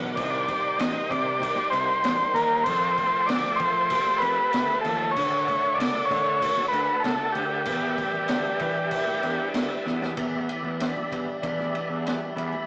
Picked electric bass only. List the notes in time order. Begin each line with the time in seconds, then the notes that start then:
0.01 B1
0.17 C2
0.79 A1
1.11 C3
1.73 C2
2.03 A1
2.34 D#2
2.66 F2
3.29 D2
3.60 F3
4.22 F2
4.54 D2
4.85 D#2
5.17 D2
5.78 C#2
6.11 D3
6.73 D2
7.04 C#2
7.35 D2
7.67 E2
8.30 D2
8.60 E3
9.23 E2
9.54 D2
9.86 E2
10.17 E2
10.63 E2
11.12 E2
11.43 E2
11.89 E2
12.36 E2